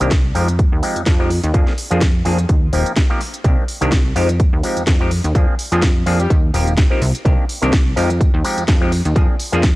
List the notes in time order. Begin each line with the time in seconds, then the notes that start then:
0.00 C2 D#3 A#3 C4 D4 G4, closed hi-hat
0.11 kick, snare, closed hi-hat
0.35 F2 F3 G#3 C4 D#4 G4, open hi-hat, tambourine
0.48 closed hi-hat, tambourine
0.59 kick, closed hi-hat
0.72 D#2
0.82 F3 G#3 C4 D#4 G4, open hi-hat, tambourine
0.96 F2, closed hi-hat, tambourine
1.06 F2, kick, snare, closed hi-hat
1.19 F3 G#3 C4 D#4 G4
1.30 open hi-hat, tambourine
1.43 D#2, closed hi-hat, tambourine
1.54 F3 A#3 C4 D4 G#4, kick, closed hi-hat
1.67 snare
1.77 open hi-hat, tambourine
1.91 F2 F3 A#3 C4 D4 F4 G#4, closed hi-hat, tambourine
2.01 kick, snare, closed hi-hat
2.25 F2 F3 A#3 C4 D4 G#4, open hi-hat, tambourine
2.39 closed hi-hat, tambourine
2.49 D#2, kick, closed hi-hat
2.73 D#1 F3 A#3 C4 D#4 G4, open hi-hat, tambourine
2.86 closed hi-hat, tambourine
2.97 kick, snare, closed hi-hat
3.10 F3 A#3 C4 D#4 G4
3.21 open hi-hat, tambourine
3.34 closed hi-hat, tambourine
3.44 C2 D#3 A#3 C4 D4 G4, kick, closed hi-hat
3.68 open hi-hat, tambourine
3.81 C2 D#3 A#3 C4 D4 G4, closed hi-hat, tambourine
3.92 kick, snare, closed hi-hat
4.16 F2 F3 G#3 C4 D#4 G4, open hi-hat, tambourine
4.29 closed hi-hat, tambourine
4.40 kick, closed hi-hat
4.53 D#2
4.63 F3 G#3 C4 D#4 G4, open hi-hat, tambourine
4.77 F2, closed hi-hat, tambourine
4.87 F2, kick, snare, closed hi-hat
5.00 F3 G#3 C4 D#4 G4
5.11 open hi-hat, tambourine
5.24 D#2, closed hi-hat, tambourine
5.35 F3 A#3 C4 D4 G#4, kick, closed hi-hat
5.59 open hi-hat, tambourine
5.72 F2 F3 A#3 C4 D4 F4 G#4, closed hi-hat, tambourine
5.82 kick, snare, closed hi-hat
6.06 F2 F3 A#3 C4 D4 G#4, open hi-hat, tambourine
6.20 G3 G4, closed hi-hat, tambourine
6.30 D#2, kick, closed hi-hat, tambourine
6.54 D#1 F3 A#3 C4 D#4 G4, open hi-hat, tambourine
6.67 closed hi-hat, tambourine
6.78 kick, snare, closed hi-hat
6.90 F3 A#3 C4 D#4 G4
7.02 C2, open hi-hat, tambourine
7.15 closed hi-hat, tambourine
7.25 C2 D#3 A#3 C4 D4 G4, kick, closed hi-hat
7.49 open hi-hat, tambourine
7.62 C2 D#3 A#3 C4 D4 G4, closed hi-hat, tambourine
7.73 kick, snare, closed hi-hat
7.96 F2 F3 G#3 C4 D#4 G4, open hi-hat, tambourine
8.09 closed hi-hat, tambourine
8.21 kick, closed hi-hat, tambourine
8.34 D#2
8.44 F3 G#3 C4 D#4 G4, open hi-hat, tambourine
8.58 F2, closed hi-hat, tambourine
8.68 F2, kick, snare, closed hi-hat
8.81 F3 G#3 C4 D#4 G4
8.92 open hi-hat, tambourine
9.05 D#2, closed hi-hat, tambourine
9.15 F2 F3 A#3 C4 D4 G#4, kick, closed hi-hat, tambourine
9.39 open hi-hat, tambourine
9.52 F2 F3 A#3 C4 D4 F4 G#4, closed hi-hat, tambourine
9.63 kick, snare, closed hi-hat, tambourine